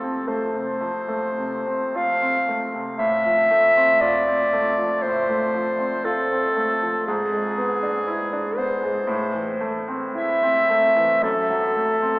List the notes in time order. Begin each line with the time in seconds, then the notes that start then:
Already playing: F2 C3 A3 C4 F4 A4
0.04 C4
0.28 A3 C5
0.54 C3
0.81 F2
1.08 A3
1.38 C3
1.67 C4
1.95 F4 F5
2.22 C4
2.48 A3
2.74 C3
2.98 A2 E5
3.25 F3
3.51 A3
3.77 C4
4.01 F4 D5
4.28 C4
4.53 A3
4.78 F3
5.02 A2 C5
5.29 A3
5.54 F3
5.79 C4
6.04 F4 A4
6.32 C4
6.57 A3
6.82 F3
7.07 G#2 G#4
7.32 G#3
7.58 B3
7.83 D4
8.08 E4
8.33 D4
8.57 B3 C5
8.83 G#3
9.07 A2
9.34 E3
9.61 A3
9.88 C4
10.14 E4 E5
10.43 C4
10.70 A3
10.96 E3
11.23 F#2 A4
11.50 F#3
11.76 A3
12.02 C4